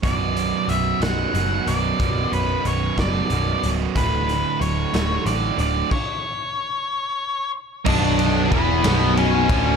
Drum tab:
CC |------|------|------|x-----|
RD |------|------|------|------|
HH |xxxxxx|xxxxxx|xxxxxx|------|
SD |---o--|---o--|---o--|------|
BD |o-----|o--o--|o-----|o-----|

CC |x-----|
RD |-xxxxx|
HH |------|
SD |---o--|
BD |o-o--o|